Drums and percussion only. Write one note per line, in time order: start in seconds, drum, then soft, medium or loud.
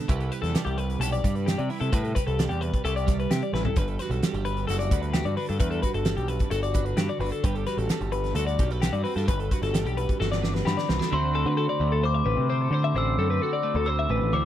0.09 kick loud
0.09 closed hi-hat medium
0.20 closed hi-hat soft
0.32 closed hi-hat medium
0.43 snare soft
0.43 closed hi-hat soft
0.55 snare loud
0.55 closed hi-hat medium
0.66 closed hi-hat soft
0.78 closed hi-hat medium
0.90 closed hi-hat soft
1.01 closed hi-hat medium
1.13 closed hi-hat soft
1.24 kick medium
1.24 closed hi-hat medium
1.35 closed hi-hat soft
1.48 snare loud
1.48 closed hi-hat medium
1.59 closed hi-hat soft
1.70 open hi-hat medium
1.81 closed hi-hat soft
1.93 kick loud
1.93 closed hi-hat medium
2.05 closed hi-hat soft
2.16 kick medium
2.16 closed hi-hat medium
2.28 closed hi-hat soft
2.39 snare loud
2.39 closed hi-hat medium
2.51 closed hi-hat soft
2.62 closed hi-hat medium
2.74 kick medium
2.74 closed hi-hat soft
2.85 closed hi-hat medium
2.97 closed hi-hat soft
3.08 kick medium
3.08 snare soft
3.08 closed hi-hat medium
3.20 closed hi-hat soft
3.31 snare loud
3.31 closed hi-hat medium
3.42 closed hi-hat soft
3.55 snare medium
3.65 floor tom medium
3.76 kick loud
3.76 closed hi-hat medium
3.88 closed hi-hat soft
3.99 snare soft
3.99 closed hi-hat medium
4.11 closed hi-hat soft
4.23 snare loud
4.23 closed hi-hat medium
4.34 closed hi-hat soft
4.45 closed hi-hat medium
4.57 closed hi-hat soft
4.69 closed hi-hat medium
4.80 closed hi-hat soft
4.91 kick medium
4.91 closed hi-hat medium
5.03 closed hi-hat soft
5.14 snare loud
5.14 closed hi-hat medium
5.26 closed hi-hat soft
5.37 open hi-hat medium
5.49 closed hi-hat soft
5.60 kick loud
5.60 closed hi-hat medium
5.72 closed hi-hat soft
5.83 kick medium
5.83 closed hi-hat medium
5.94 closed hi-hat soft
6.05 snare loud
6.05 closed hi-hat medium
6.17 closed hi-hat soft
6.28 closed hi-hat medium
6.39 kick medium
6.39 closed hi-hat soft
6.51 closed hi-hat medium
6.63 closed hi-hat soft
6.74 kick medium
6.74 closed hi-hat medium
6.86 closed hi-hat soft
6.97 snare loud
6.97 closed hi-hat medium
7.09 closed hi-hat soft
7.21 open hi-hat medium
7.32 closed hi-hat soft
7.44 kick loud
7.44 closed hi-hat medium
7.55 closed hi-hat soft
7.67 snare soft
7.67 closed hi-hat medium
7.78 closed hi-hat soft
7.89 snare loud
7.89 closed hi-hat medium
8.01 closed hi-hat soft
8.12 closed hi-hat medium
8.24 snare soft
8.24 closed hi-hat soft
8.35 closed hi-hat medium
8.47 closed hi-hat soft
8.59 kick medium
8.59 closed hi-hat medium
8.71 closed hi-hat soft
8.82 snare loud
8.82 closed hi-hat medium
8.94 closed hi-hat soft
9.05 open hi-hat medium
9.17 snare soft
9.17 closed hi-hat soft
9.28 kick loud
9.28 closed hi-hat medium
9.40 closed hi-hat soft
9.51 kick medium
9.51 closed hi-hat medium
9.63 snare soft
9.63 closed hi-hat soft
9.74 snare loud
9.74 closed hi-hat medium
9.86 closed hi-hat soft
9.98 closed hi-hat medium
10.09 kick medium
10.09 closed hi-hat soft
10.21 snare medium
10.32 snare medium
10.44 snare medium
10.55 snare medium
10.67 snare medium
10.78 snare medium
10.89 snare medium
11.01 snare medium